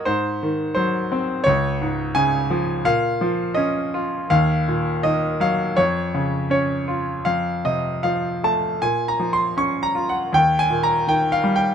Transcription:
<<
  \new Staff \with { instrumentName = "Grand piano" } { \time 4/4 \key bes \minor \tempo 4 = 82 c''4 c''4 des''4 aes''4 | f''4 ees''4 f''4 ees''8 f''8 | des''4 des''4 f''8 ees''8 f''8 a''8 | \tuplet 3/2 { aes''8 bes''8 c'''8 des'''8 bes''8 ges''8 g''8 aes''8 bes''8 g''8 f''8 g''8 } | }
  \new Staff \with { instrumentName = "Grand piano" } { \clef bass \time 4/4 \key bes \minor aes,8 ees8 ges8 c'8 des,8 aes,8 des8 f8 | bes,8 f8 des'8 f'8 ees,8 bes,8 ees8 ges8 | f,8 des8 des'8 f'8 f,8 c8 f8 a8 | bes,8 f8 des'8 f'8 ees,8 bes,8 ees8 g8 | }
>>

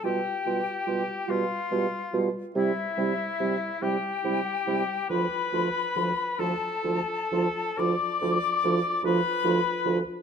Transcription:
<<
  \new Staff \with { instrumentName = "Flute" } { \time 12/8 \key d \dorian \tempo 4. = 47 g''4. f''4 r8 e''4. g''4. | b''4. a''4. d'''4. b''4 r8 | }
  \new Staff \with { instrumentName = "Oboe" } { \time 12/8 \key d \dorian g'4. f'4 r8 e'4. g'4. | b'4. a'4. d''4. b'4 r8 | }
  \new Staff \with { instrumentName = "Clarinet" } { \time 12/8 \key d \dorian f'8 f'8 f'8 f'8 f'8 f'8 e'8 e'8 e'8 e'8 e'8 e'8 | f'8 f'8 f'8 f'8 f'8 f'8 f'8 f'8 f'8 f'8 f'8 f'8 | }
  \new Staff \with { instrumentName = "French horn" } { \clef bass \time 12/8 \key d \dorian g8 g8 g8 g8 g8 g8 g8 g8 g8 g8 g8 g8 | f8 f8 f8 f8 f8 f8 f8 f8 f8 f8 f8 f8 | }
  \new Staff \with { instrumentName = "Bassoon" } { \clef bass \time 12/8 \key d \dorian b,8 b,8 b,8 b,8 b,8 b,8 c8 c8 c8 c8 c8 c8 | d,8 d,8 d,8 d,8 d,8 d,8 d,8 d,8 d,8 d,8 d,8 d,8 | }
>>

